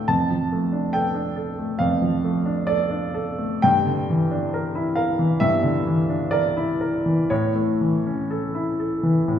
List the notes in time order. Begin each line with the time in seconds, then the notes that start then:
Already playing: D2 A2 A3 D4 A4 F5 G5
0.08 F2 A5
0.30 F3
0.52 A3
0.72 D4
0.93 A4 G5
1.15 D4
1.36 A4
1.59 A3
1.79 F2 F5
2.02 F3
2.24 A3
2.46 D4
2.67 A4 D5
2.91 D4
3.14 A4
3.38 A3
3.62 G2 G5
3.86 D3
4.10 E3
4.31 D4
4.54 A#4
4.75 E4
4.96 A#4 F5
5.19 E3
5.40 G2 E5
5.63 D3
5.86 E3
6.09 D4
6.31 A#4 D5
6.57 E4
6.81 A#4
7.06 E3
7.30 A2 C#5
7.55 A3
7.81 E3
8.06 C#4
8.31 A4
8.55 E4
8.80 A4
9.03 E3
9.28 A2